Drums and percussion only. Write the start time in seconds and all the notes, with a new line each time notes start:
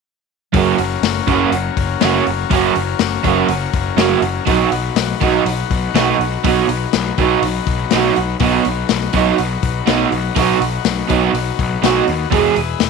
0.54 kick, open hi-hat
0.78 open hi-hat
1.03 snare, open hi-hat
1.28 kick, open hi-hat
1.52 open hi-hat
1.77 kick, open hi-hat
2.01 snare, open hi-hat
2.27 open hi-hat
2.51 kick, open hi-hat
2.75 open hi-hat
2.99 snare, open hi-hat
3.24 kick, open hi-hat
3.48 open hi-hat
3.73 kick, open hi-hat
3.98 snare, open hi-hat
4.22 open hi-hat
4.47 kick, open hi-hat
4.72 open hi-hat
4.96 snare, open hi-hat
5.21 kick, open hi-hat
5.46 open hi-hat
5.71 kick, open hi-hat
5.95 snare, open hi-hat
6.21 open hi-hat
6.45 kick, open hi-hat
6.69 open hi-hat
6.93 snare, open hi-hat
7.18 kick, open hi-hat
7.43 open hi-hat
7.67 kick, open hi-hat
7.91 snare, open hi-hat
8.16 open hi-hat
8.40 kick, open hi-hat
8.65 open hi-hat
8.89 snare, open hi-hat
9.13 kick, open hi-hat
9.38 open hi-hat
9.63 kick, open hi-hat
9.87 snare, open hi-hat
10.12 open hi-hat
10.36 kick, open hi-hat
10.62 open hi-hat
10.85 snare, open hi-hat
11.09 kick, open hi-hat
11.35 open hi-hat
11.59 kick, open hi-hat
11.84 snare, open hi-hat
12.08 open hi-hat
12.32 kick, open hi-hat
12.56 open hi-hat
12.80 snare, open hi-hat